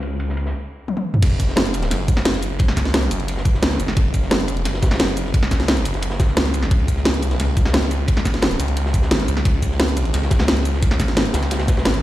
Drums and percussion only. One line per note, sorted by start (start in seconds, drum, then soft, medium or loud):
0.03 ride medium
0.20 ride medium
0.29 snare soft
0.37 ride medium
0.46 snare soft
0.88 high tom medium
0.97 high tom medium
1.14 mid tom medium
1.23 kick loud
1.23 closed hi-hat loud
1.23 ride loud
1.23 crash loud
1.31 ride soft
1.39 kick medium
1.39 closed hi-hat medium
1.39 ride medium
1.39 shaker medium
1.48 snare soft
1.56 snare loud
1.56 closed hi-hat loud
1.56 ride medium
1.65 closed hi-hat soft
1.65 ride soft
1.65 shaker soft
1.74 closed hi-hat medium
1.74 ride medium
1.74 shaker medium
1.82 snare medium
1.82 closed hi-hat soft
1.91 snare soft
1.91 closed hi-hat loud
1.91 ride medium
1.91 shaker soft
2.08 kick loud
2.08 closed hi-hat medium
2.08 ride medium
2.08 shaker medium
2.17 snare medium
2.25 snare loud
2.25 closed hi-hat loud
2.25 ride medium
2.34 snare medium
2.34 closed hi-hat soft
2.42 closed hi-hat medium
2.42 ride medium
2.42 shaker medium
2.59 kick loud
2.59 closed hi-hat medium
2.59 ride loud
2.68 snare medium
2.76 kick medium
2.76 snare soft
2.76 closed hi-hat medium
2.76 ride medium
2.76 shaker medium
2.85 snare soft
2.85 closed hi-hat soft
2.94 snare loud
2.94 closed hi-hat medium
2.94 ride medium
3.03 snare soft
3.03 closed hi-hat soft
3.03 shaker soft
3.11 open hi-hat medium
3.11 ride medium
3.11 shaker medium
3.20 closed hi-hat soft
3.28 closed hi-hat loud
3.28 ride medium
3.28 shaker soft
3.37 snare medium
3.45 kick loud
3.45 closed hi-hat medium
3.45 ride medium
3.45 shaker medium
3.54 snare soft
3.63 snare loud
3.63 closed hi-hat loud
3.63 ride medium
3.71 snare medium
3.71 closed hi-hat soft
3.80 closed hi-hat medium
3.80 ride medium
3.80 shaker medium
3.88 snare soft
3.88 ride soft
3.97 kick loud
3.97 closed hi-hat medium
3.97 ride loud
4.05 ride soft
4.14 kick medium
4.14 closed hi-hat medium
4.14 ride medium
4.14 shaker medium
4.23 snare soft
4.31 snare loud
4.31 closed hi-hat medium
4.31 ride medium
4.40 closed hi-hat soft
4.40 ride soft
4.40 shaker soft
4.48 closed hi-hat medium
4.48 ride medium
4.48 shaker medium
4.57 closed hi-hat soft
4.65 snare soft
4.65 closed hi-hat loud
4.65 ride medium
4.65 shaker soft
4.74 snare medium
4.82 kick loud
4.82 snare loud
4.82 closed hi-hat medium
4.82 ride medium
4.82 shaker medium
4.91 snare medium
4.91 ride medium
4.95 snare medium
4.95 ride medium
4.99 snare loud
4.99 closed hi-hat medium
4.99 ride medium
5.08 snare medium
5.08 closed hi-hat soft
5.16 closed hi-hat medium
5.16 ride medium
5.16 shaker medium
5.26 snare soft
5.34 kick loud
5.34 closed hi-hat medium
5.34 ride loud
5.43 snare medium
5.51 kick medium
5.51 snare soft
5.51 closed hi-hat medium
5.51 ride medium
5.51 shaker medium
5.60 snare soft
5.60 closed hi-hat soft
5.68 snare loud
5.68 closed hi-hat medium
5.68 ride loud
5.77 snare soft
5.77 closed hi-hat soft
5.77 shaker soft
5.85 open hi-hat medium
5.85 ride medium
5.85 shaker medium
5.94 snare soft
5.94 closed hi-hat soft
6.02 closed hi-hat medium
6.02 ride medium
6.02 shaker soft
6.10 snare medium
6.20 kick loud
6.20 snare loud
6.20 closed hi-hat medium
6.20 ride medium
6.20 shaker medium
6.28 snare soft
6.37 snare loud
6.37 closed hi-hat medium
6.37 ride medium
6.45 snare medium
6.45 closed hi-hat soft
6.54 closed hi-hat medium
6.54 ride medium
6.54 shaker medium
6.62 snare soft
6.62 ride soft
6.71 kick loud
6.71 closed hi-hat medium
6.71 ride loud
6.80 ride soft
6.88 kick medium
6.88 closed hi-hat medium
6.88 ride medium
6.88 shaker medium
6.97 snare soft
7.05 snare loud
7.05 closed hi-hat medium
7.05 ride medium
7.14 closed hi-hat soft
7.14 ride soft
7.14 shaker soft
7.22 closed hi-hat medium
7.22 ride medium
7.22 shaker medium
7.31 snare medium
7.31 closed hi-hat soft
7.40 snare soft
7.40 closed hi-hat medium
7.40 ride medium
7.40 shaker soft
7.56 kick loud
7.56 closed hi-hat medium
7.56 ride medium
7.56 shaker medium
7.65 snare medium
7.73 snare loud
7.73 closed hi-hat medium
7.73 ride medium
7.83 snare medium
7.83 closed hi-hat soft
7.91 closed hi-hat medium
7.91 ride medium
7.91 shaker medium
8.08 kick loud
8.08 closed hi-hat medium
8.08 ride medium
8.17 snare medium
8.25 kick medium
8.25 snare soft
8.25 closed hi-hat medium
8.25 ride medium
8.25 shaker medium
8.34 snare soft
8.34 closed hi-hat soft
8.42 snare loud
8.42 closed hi-hat medium
8.42 ride loud
8.51 snare soft
8.51 closed hi-hat soft
8.51 shaker soft
8.60 open hi-hat medium
8.60 ride medium
8.60 shaker medium
8.68 closed hi-hat soft
8.77 closed hi-hat medium
8.77 ride medium
8.77 shaker soft
8.86 snare medium
8.94 kick loud
8.94 closed hi-hat medium
8.94 ride medium
8.94 shaker medium
9.02 snare soft
9.11 snare loud
9.11 closed hi-hat medium
9.11 ride medium
9.19 snare medium
9.19 closed hi-hat soft
9.28 closed hi-hat medium
9.28 ride medium
9.28 shaker medium
9.36 snare soft
9.36 ride soft
9.45 kick loud
9.45 closed hi-hat medium
9.45 ride medium
9.54 ride soft
9.62 kick medium
9.62 closed hi-hat medium
9.62 ride medium
9.62 shaker medium
9.72 snare soft
9.80 snare loud
9.80 closed hi-hat medium
9.80 ride loud
9.88 closed hi-hat soft
9.88 ride soft
9.88 shaker soft
9.97 closed hi-hat medium
9.97 ride medium
9.97 shaker medium
10.05 closed hi-hat soft
10.14 snare soft
10.14 closed hi-hat loud
10.14 ride medium
10.14 shaker soft
10.23 snare medium
10.31 kick loud
10.31 snare medium
10.31 closed hi-hat medium
10.31 ride medium
10.31 shaker medium
10.39 snare loud
10.39 snare medium
10.39 ride medium
10.48 snare loud
10.48 closed hi-hat medium
10.48 ride medium
10.57 snare soft
10.57 closed hi-hat soft
10.65 closed hi-hat medium
10.65 ride medium
10.65 shaker medium
10.74 snare soft
10.82 kick loud
10.82 closed hi-hat loud
10.82 ride medium
10.91 snare medium
11.00 kick medium
11.00 snare soft
11.00 closed hi-hat medium
11.00 ride medium
11.00 shaker medium
11.08 snare soft
11.08 closed hi-hat soft
11.17 snare loud
11.17 closed hi-hat medium
11.17 ride medium
11.25 snare soft
11.25 closed hi-hat soft
11.25 shaker soft
11.34 snare loud
11.34 open hi-hat medium
11.34 ride medium
11.34 shaker medium
11.43 snare soft
11.43 closed hi-hat soft
11.43 ride soft
11.51 snare loud
11.51 closed hi-hat loud
11.51 ride medium
11.51 shaker soft
11.59 snare loud
11.59 ride medium
11.68 kick loud
11.68 snare loud
11.68 closed hi-hat medium
11.68 ride medium
11.68 shaker medium
11.77 snare loud
11.77 ride medium
11.85 snare loud
11.85 closed hi-hat loud
11.85 ride medium
11.93 snare medium
11.93 closed hi-hat soft
11.93 shaker soft